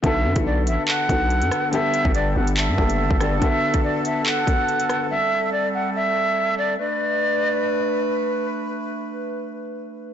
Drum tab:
HH |x--x--x---x-xxx-|x-x-x--xx--x--x-|x--x--x---x-xxx-|----------------|
CP |--------x-------|--------x-------|--------x-------|----------------|
SD |--------------r-|--------------r-|--------------r-|----------------|
BD |o--o------o-----|---o------o--o--|o--o------o-----|----------------|

HH |----------------|----------------|
CP |----------------|----------------|
SD |----------------|----------------|
BD |----------------|----------------|